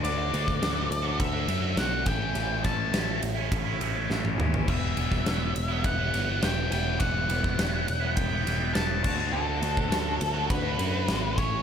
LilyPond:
<<
  \new Staff \with { instrumentName = "Lead electric guitar" } { \time 4/4 \key d \major \tempo 4 = 103 d''2 e''4 fis''8 g''8~ | g''8 a''4 r2 r8 | e''2 fis''4 g''8 g''8 | fis''2 g''4 a''8 a''8 |
a'2 b'4. cis''8 | }
  \new Staff \with { instrumentName = "Overdriven electric guitar" } { \time 4/4 \key d \major <d a d' fis'>8 <d a d' fis'>8 <d a d' fis'>16 <a d' fis'>8 <a d' fis'>8 <a d' fis'>16 <d a d' fis'>16 <a d' fis'>16 <d a d' fis'>8 <a, e a cis' e'>16 <a cis' e'>16 | <a, e a cis' e'>8 <e a cis' e'>8 <a, e a cis' e'>16 <a cis' e'>8 <a cis' e'>8 <a cis' e'>16 <e a cis' e'>16 <a cis' e'>16 <a, e a cis' e'>8 <e a cis' e'>16 <a cis' e'>16 | <e g b e'>8 <e g b e'>8 <e g b e'>16 <g b e'>8 <g b e'>8 <g b e'>16 <e g b e'>16 <g b e'>16 <e g b e'>8 <e g b e'>16 <g b e'>16 | <e g b e'>8 <e g b e'>8 <e g b e'>16 <g b e'>8 <g b e'>8 <g b e'>16 <e g b e'>16 <g b e'>16 <e g b e'>8 <d a d' fis'>16 <a d' fis'>16 |
<d a d' fis'>8 <d a d' fis'>8 <d a d' fis'>16 <a d' fis'>8 <a d' fis'>8 <a d' fis'>16 <d a d' fis'>16 <a d' fis'>16 <d a d' fis'>8 <a, e a cis' e'>16 <a cis' e'>16 | }
  \new Staff \with { instrumentName = "Picked electric bass" } { \clef bass \time 4/4 \key d \major d,8 d,8 d,8 d,8 d,8 fis,8 b,,8 a,,8 | a,,8 a,,8 a,,8 a,,8 a,,8 a,,8 a,,8 dis,8 | e,,8 e,,8 e,,8 e,,8 e,,8 g,,8 e,,8 e,,8 | e,,8 e,,8 e,,8 e,,8 e,,8 e,,8 e,,8 d,8 |
d,8 d,8 d,8 d,8 d,8 fis,8 gis,,8 a,,8 | }
  \new DrumStaff \with { instrumentName = "Drums" } \drummode { \time 4/4 cymr8 cymr16 <bd sn>16 <cymr sn>8 cymr8 <bd cymr>8 cymr8 <cymr sn>8 <bd cymr sn>8 | cymr8 <bd cymr>8 <cymr sn>8 cymr8 <bd cymr>8 cymr8 sn16 tommh16 toml16 tomfh16 | <cymc bd>8 cymr16 <bd sn>16 <cymr sn>8 cymr8 <bd cymr>8 <cymr sn>8 <cymr sn>8 <cymr sn>8 | <bd cymr>8 cymr16 bd16 <cymr sn>8 cymr8 <bd cymr>8 <cymr sn>8 <cymr sn>8 <cymc bd>8 |
r8 cymr16 bd16 <cymr sn>8 cymr8 <bd cymr>8 cymr8 <cymr sn>8 <bd cymr sn>8 | }
>>